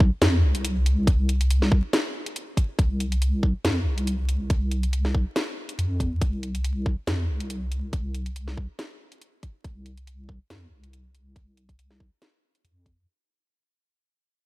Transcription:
0.00 0.10 C2 loud
0.00 kick loud
0.22 0.44 F2 loud
0.22 snare loud
0.22 closed hi-hat medium
0.43 1.06 C2 loud
0.55 closed hi-hat medium
0.65 closed hi-hat medium
0.86 closed hi-hat medium
1.07 1.82 C2 loud
1.07 kick loud
1.07 closed hi-hat medium
1.29 closed hi-hat medium
1.41 closed hi-hat medium
1.50 closed hi-hat medium
1.62 snare soft
1.72 kick loud
1.93 snare loud
1.93 closed hi-hat medium
2.26 closed hi-hat medium
2.36 closed hi-hat medium
2.57 kick medium
2.57 closed hi-hat medium
2.79 3.53 C2 loud
2.79 kick loud
2.79 closed hi-hat medium
3.00 closed hi-hat medium
3.12 closed hi-hat medium
3.22 closed hi-hat medium
3.43 kick loud
3.64 3.87 F2 loud
3.64 snare loud
3.64 closed hi-hat medium
3.86 4.49 C2 loud
3.98 closed hi-hat medium
4.07 closed hi-hat medium
4.29 closed hi-hat medium
4.50 5.25 C2 loud
4.50 kick loud
4.50 closed hi-hat medium
4.71 closed hi-hat soft
4.83 closed hi-hat medium
4.93 closed hi-hat medium
5.05 snare soft
5.14 kick loud
5.36 snare loud
5.36 closed hi-hat medium
5.69 closed hi-hat soft
5.79 6.20 F2 medium
5.79 closed hi-hat medium
6.00 kick medium
6.00 closed hi-hat soft
6.21 6.96 C2 loud
6.21 kick loud
6.21 closed hi-hat medium
6.43 closed hi-hat soft
6.55 closed hi-hat soft
6.64 closed hi-hat medium
6.86 kick loud
7.07 7.30 F2 loud
7.07 snare loud
7.07 closed hi-hat medium
7.29 7.92 C2 medium
7.40 closed hi-hat soft
7.50 closed hi-hat medium
7.72 closed hi-hat soft
7.93 8.67 C2 loud
7.93 kick loud
7.93 closed hi-hat medium
8.15 closed hi-hat soft
8.26 closed hi-hat soft
8.36 closed hi-hat medium
8.48 snare soft
8.57 kick loud
8.79 snare loud
8.79 closed hi-hat medium
9.12 closed hi-hat soft
9.22 closed hi-hat medium
9.43 kick medium
9.43 closed hi-hat soft
9.65 10.39 C2 loud
9.65 kick loud
9.65 closed hi-hat medium
9.86 closed hi-hat soft
9.98 closed hi-hat soft
10.07 closed hi-hat medium
10.29 kick medium
10.50 10.73 F2 loud
10.50 snare loud
10.50 closed hi-hat medium
10.72 11.35 C2 medium
10.83 closed hi-hat soft
10.93 closed hi-hat medium
11.15 closed hi-hat soft
11.36 kick loud
11.36 closed hi-hat medium
11.57 closed hi-hat medium
11.69 kick medium
11.69 closed hi-hat soft
11.79 closed hi-hat medium
11.91 snare soft
12.00 kick medium
12.22 snare loud
12.22 closed hi-hat medium
12.55 closed hi-hat soft
12.64 13.06 F2 medium
12.64 closed hi-hat medium
12.86 kick medium
12.86 closed hi-hat medium

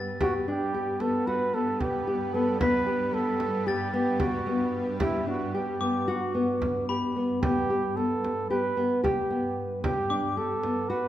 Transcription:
0.00 11.08 G2 medium
0.00 11.08 G3 medium
0.00 0.15 B3 medium
0.00 11.08 B3 medium
0.00 0.97 A6 medium
0.21 0.34 F#4 medium
0.21 0.45 G4 medium
0.21 frame drum medium
0.48 0.72 D4 medium
0.48 1.02 G4 medium
0.74 0.98 G4 medium
0.74 frame drum soft
1.00 1.25 B3 medium
1.00 1.29 A4 medium
1.00 frame drum soft
1.27 1.51 F#4 medium
1.27 1.56 B4 medium
1.27 frame drum soft
1.54 2.02 B3 medium
1.54 1.82 A4 medium
1.80 2.35 G4 medium
1.80 frame drum soft
2.07 2.31 G4 medium
2.33 2.58 B3 medium
2.33 2.60 A4 medium
2.60 2.84 B3 medium
2.60 3.16 B4 loud
2.60 3.64 B6 soft
2.60 frame drum medium
2.86 3.11 G4 medium
3.13 3.61 B3 medium
3.13 3.68 A4 medium
3.13 frame drum soft
3.40 frame drum soft
3.66 3.91 G4 medium
3.66 3.93 G4 medium
3.66 4.70 A6 medium
3.66 frame drum soft
3.94 4.17 B3 medium
3.94 4.23 G4 medium
4.20 4.81 F#4 medium
4.20 4.44 G4 medium
4.20 frame drum medium
4.47 4.95 B3 medium
5.00 5.26 E4 medium
5.00 5.24 G4 medium
5.00 frame drum medium
5.27 5.51 D4 medium
5.27 5.56 F#4 medium
5.54 5.78 G4 medium
5.54 6.10 G4 medium
5.81 6.05 B3 medium
5.81 6.85 D6 medium
6.08 6.32 F#4 medium
6.08 6.90 F#4 medium
6.34 6.83 B3 medium
6.34 frame drum soft
6.62 frame drum soft
6.89 7.14 G4 medium
6.89 7.94 B5 medium
7.16 7.41 B3 medium
7.43 7.67 B3 medium
7.43 7.98 G4 loud
7.43 frame drum medium
7.70 7.94 G4 medium
7.96 8.45 B3 medium
7.96 8.50 A4 medium
7.96 frame drum soft
8.24 frame drum soft
8.50 8.75 G4 medium
8.50 9.00 B4 medium
8.50 frame drum soft
8.77 9.01 B3 medium
9.03 9.28 G4 medium
9.03 9.60 G4 medium
9.03 frame drum soft
9.30 9.78 B3 medium
9.84 10.08 G4 medium
9.84 10.39 G4 medium
9.84 frame drum medium
10.10 10.34 D4 medium
10.10 11.08 D6 medium
10.37 10.61 G4 medium
10.37 10.91 A4 medium
10.37 frame drum soft
10.63 10.87 B3 medium
10.63 frame drum soft
10.89 11.08 F#4 medium
10.89 11.08 B4 loud
10.89 frame drum soft

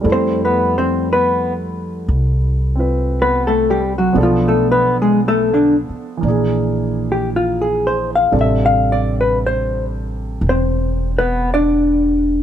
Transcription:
0.01 2.06 F2 medium
0.01 4.15 G3 soft
0.01 4.16 A3 soft
0.01 4.17 E4 soft
0.06 4.16 A4 soft
0.12 0.42 C4 medium
0.12 0.42 C5 medium
0.45 0.76 B3 soft
0.45 0.75 B4 medium
0.78 1.09 C4 soft
0.78 1.09 C5 medium
1.13 1.52 B3 soft
1.13 1.52 B4 medium
2.08 4.13 C2 medium
2.76 4.16 C4 soft
2.76 4.17 F4 soft
2.80 4.18 B4 soft
3.22 3.51 B3 soft
3.22 3.47 B4 medium
3.47 3.81 A3 soft
3.47 3.81 A4 medium
3.70 3.93 G3 medium
3.70 3.93 G4 medium
3.98 4.16 F#3 soft
3.98 4.16 F#4 medium
4.13 5.84 B1 medium
4.13 6.22 F3 soft
4.13 6.23 B3 soft
4.13 6.23 D4 soft
4.18 6.25 A4 medium
4.23 4.54 F3 soft
4.23 4.53 F4 medium
4.48 4.83 A3 soft
4.48 4.72 A4 medium
4.72 4.96 B3 medium
4.72 4.95 B4 medium
5.02 5.20 G#3 soft
5.02 5.20 G#4 medium
5.28 5.53 A3 medium
5.28 5.58 A4 medium
5.54 5.75 D3 soft
5.54 5.75 D4 medium
5.89 muted upright bass stroke soft
6.17 8.30 E3 soft
6.17 8.32 A#3 soft
6.23 8.29 A#1 medium
6.23 8.31 D4 soft
6.28 8.35 G#4 soft
7.12 7.29 G4 medium
7.36 7.66 F4 medium
7.62 7.96 G#4 medium
7.87 8.10 C5 medium
8.15 8.33 F5 medium
8.31 10.37 A1 medium
8.31 12.43 C3 soft
8.31 12.43 G3 soft
8.31 12.43 D4 soft
8.31 12.43 A4 soft
8.41 8.65 E5 medium
8.66 9.00 F5 medium
8.92 9.14 D5 medium
9.21 9.38 B4 medium
9.46 9.85 C5 medium
10.41 12.43 E1 medium
10.49 11.11 C4 soft
10.49 11.11 C5 medium
11.18 11.49 B3 medium
11.18 11.48 B4 medium
11.54 12.43 D4 medium
11.54 12.43 D5 medium

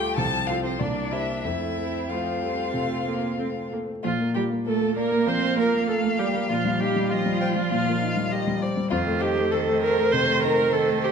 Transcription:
0.00 0.14 D2 medium
0.00 0.19 G3 soft
0.00 0.19 A3 soft
0.00 0.20 A3 soft
0.00 0.19 F4 soft
0.00 0.16 G4 medium
0.00 0.16 G5 medium
0.16 0.78 C2 soft
0.16 0.81 F3 soft
0.16 0.82 C4 soft
0.16 0.24 A4 medium
0.16 0.48 A5 medium
0.47 0.54 F4 soft
0.47 0.77 F4 soft
0.47 0.77 A4 soft
0.47 0.63 F5 medium
0.64 0.79 C4 soft
0.64 0.81 C5 soft
0.79 1.43 C2 soft
0.79 1.46 A#3 soft
0.79 1.10 D4 soft
0.79 1.47 D4 soft
0.79 1.14 D5 soft
1.11 1.19 E4 soft
1.11 1.41 G4 soft
1.11 1.42 C5 soft
1.11 1.43 E5 medium
1.44 2.70 F2 soft
1.44 2.03 A3 soft
1.44 3.83 C4 soft
1.44 2.12 E4 medium
1.44 2.10 E5 medium
1.78 2.29 A4 soft
2.09 2.43 F3 soft
2.09 2.61 A3 soft
2.09 3.72 F4 soft
2.09 3.71 F5 soft
2.42 2.76 G3 soft
2.42 2.93 A4 soft
2.74 3.26 C3 soft
2.74 3.06 A3 soft
3.06 3.38 A#3 soft
3.06 3.59 A4 soft
3.39 3.91 A3 soft
3.39 3.47 C4 soft
3.72 3.80 A#3 soft
3.72 4.04 A4 soft
4.03 5.24 A#2 soft
4.03 4.11 F3 medium
4.03 4.11 F4 medium
4.03 4.33 F4 medium
4.19 4.44 A#3 soft
4.34 4.43 G3 medium
4.34 4.60 F4 soft
4.34 4.42 G4 medium
4.34 4.43 G4 medium
4.50 4.75 A#3 soft
4.66 4.94 A3 medium
4.66 4.96 A4 medium
4.66 4.97 A4 medium
4.66 4.91 A#4 soft
4.81 5.06 A#3 soft
4.95 5.28 A#3 medium
4.95 5.30 A#4 medium
4.95 5.21 D5 soft
5.12 5.37 A#3 soft
5.26 5.52 F3 soft
5.26 5.58 C4 medium
5.26 5.59 C5 medium
5.26 5.58 C5 medium
5.26 7.13 F5 medium
5.43 5.67 A#3 soft
5.56 5.89 A#3 medium
5.56 5.82 F4 soft
5.56 5.88 A#4 medium
5.74 5.98 A#3 soft
5.88 6.20 A3 medium
5.88 5.96 A4 medium
5.88 6.21 A4 medium
5.88 6.13 A#4 soft
6.04 6.28 A#3 soft
6.18 6.48 G3 medium
6.18 6.26 G4 medium
6.18 6.49 G4 medium
6.18 6.43 D5 soft
6.35 6.50 A#3 soft
6.48 7.68 A#2 soft
6.48 6.82 F3 medium
6.48 6.81 F4 medium
6.48 6.57 F4 medium
6.65 6.89 G3 soft
6.79 7.12 G3 medium
6.79 7.05 D#4 soft
6.79 7.08 G4 medium
6.79 7.11 G4 medium
6.96 7.20 G3 soft
7.08 8.62 F3 medium
7.08 8.58 F4 medium
7.08 8.62 F4 medium
7.08 7.35 G4 soft
7.08 7.40 D#5 medium
7.26 7.50 G3 soft
7.41 7.65 C5 soft
7.41 7.49 G5 medium
7.56 7.80 G3 soft
7.71 8.88 A#2 soft
7.71 8.33 F5 medium
7.87 8.11 A#3 soft
8.02 8.26 D#4 soft
8.17 8.41 G3 soft
8.32 8.56 G4 soft
8.32 8.64 D#5 medium
8.47 8.71 G3 soft
8.62 8.86 C5 soft
8.62 8.91 D5 medium
8.77 8.92 G3 soft
8.90 10.10 F2 medium
8.90 9.48 D#3 medium
8.90 8.98 F4 medium
8.90 9.23 F4 medium
8.90 11.12 C5 medium
9.07 9.31 A3 soft
9.20 9.46 D#4 soft
9.20 9.28 G4 medium
9.20 9.52 G4 medium
9.38 9.62 A3 soft
9.51 10.11 D#3 medium
9.51 9.81 A4 medium
9.51 9.60 A4 medium
9.51 9.77 A4 soft
9.68 9.92 A3 soft
9.82 10.14 A#4 medium
9.82 10.13 A#4 medium
9.82 10.07 C5 soft
9.98 10.22 A3 soft
10.11 10.37 C3 soft
10.11 10.72 D#3 medium
10.11 10.42 C5 medium
10.11 10.44 C5 medium
10.29 10.53 A3 soft
10.42 10.68 D#4 medium
10.42 10.74 A#4 medium
10.42 10.75 A#4 medium
10.59 10.83 A3 soft
10.73 11.12 D#3 medium
10.73 11.03 A4 medium
10.73 11.04 A4 medium
10.73 10.98 A4 soft
10.89 11.12 A3 medium
11.03 11.12 G4 medium
11.03 11.11 G4 medium
11.03 11.12 C5 soft

